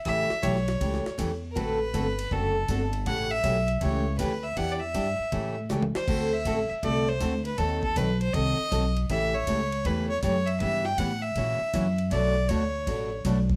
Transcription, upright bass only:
X:1
M:4/4
L:1/8
Q:"Swing" 1/4=159
K:Amix
V:1 name="Upright bass" clef=bass
A,,, z B,,,2 C,, z E,,2 | A,,,2 G,,,2 F,,,2 G,,,2 | A,,,2 B,,,2 C,,2 D,,2 | E,,2 G,, z A,,2 C,, z |
D,,2 A,,, z =C,,2 D,,2 | ^D,,2 B,,,2 ^B,,, z =B,,,2 | A,,,2 C,,2 E,,2 F,,2 | G,,2 A,,2 ^A,, z F,,2 |
B,,,2 D,,2 A,,,2 B,,,2 |]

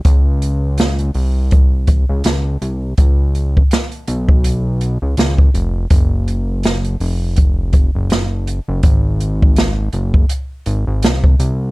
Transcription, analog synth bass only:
X:1
M:4/4
L:1/16
Q:"Swing 16ths" 1/4=82
K:Db
V:1 name="Analog synth bass" clef=bass
D,,6 C,,4- C,, D,, D,,2 C,,2 | D,,4 z2 _C,,4- C,, D,, D,,2 F,,,2 | G,,,6 F,,,4- F,,, G,,,4 G,,, | A,,,6 G,,,2 z2 A,,, A,,, C,,2 C,,2 |]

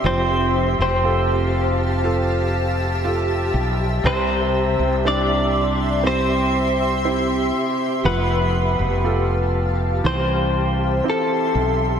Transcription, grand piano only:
X:1
M:4/4
L:1/8
Q:1/4=60
K:C
V:1 name="Grand piano"
F,2 [FGA]2 [FGA]2 [FGA]2 | C,2 [CEG]2 [CEG]2 [CEG]2 | F,2 [FGA]2 E,2 [CEG]2 |]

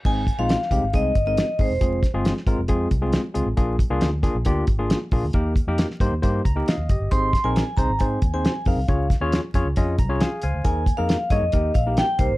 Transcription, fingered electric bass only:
X:1
M:4/4
L:1/16
Q:1/4=136
K:Ab
V:1 name="Fingered electric bass" clef=bass
A,,,3 B,,,2 z C,, A,,, C,,2 G,,,3 z A,,, _F,,, | F,,,3 G,,,2 z A,,, F,,, F,,2 C,,3 z D,, =A,,, | B,,,3 C,, =D,,3 B,,, D,,2 A,,,3 z B,,, D,, | E,,3 F,,2 z G,, E,, G,,2 D,,2 z E,, _G,,, =G,,, |
A,,,3 B,,,2 z C,, A,,, A,,2 E,,3 z F,, C,, | D,,3 E,,2 z F,, D,, F,,2 C,,3 z D,, =D,, | E,,3 F,,2 z G,, F,, E,,2 B,,,3 z C,, G,,, |]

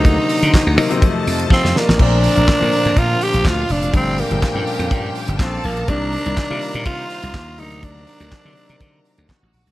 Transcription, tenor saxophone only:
X:1
M:4/4
L:1/8
Q:1/4=123
K:Bb
V:1 name="Tenor saxophone"
E3 z3 C B, | D4 F G F D | C B,4 z C B, | D4 F3 E |
D6 z2 |]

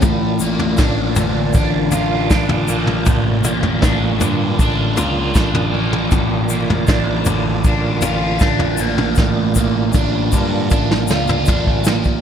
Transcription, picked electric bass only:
X:1
M:4/4
L:1/8
Q:1/4=79
K:none
V:1 name="Picked electric bass" clef=bass
A,,, A,,, A,,, A,,, A,,, A,,, A,,, A,,, | A,,, A,,, A,,, G,, A,,, ^C,, A,,, A,,, | A,,, A,,, A,,, A,,, A,,, A,,, A,,, A,,, | A,,, A,,, A,,, G,, A,,, ^C,, A,,, A,,, |]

